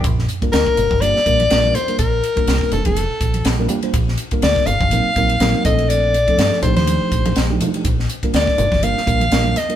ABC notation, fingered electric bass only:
X:1
M:4/4
L:1/16
Q:"Swing 16ths" 1/4=123
K:Bb
V:1 name="Fingered electric bass" clef=bass
B,,,2 z2 D,, z G,,, G,,,2 z B,,,2 B,,,2 z2 | B,,,2 z2 C,, z F,,, F,,,2 z B,,,2 B,,,2 z2 | B,,,2 z2 D,, z G,,, G,,, B,,, z B,,,2 B,,, z B,,,2- | B,,,4 G,, z B,,, E,,2 z B,,,2 B,,,2 z2 |
B,,,2 z2 D,, z G,,, G,,,2 z B,,,2 B,,,2 z2 |]